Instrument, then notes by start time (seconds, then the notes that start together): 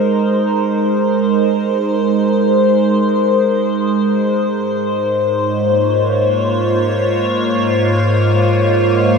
ambient pad
Already playing: G#3 D#4 A#4 C5
4.49 G#2
5.00 C#5
5.30 F4
5.54 A#3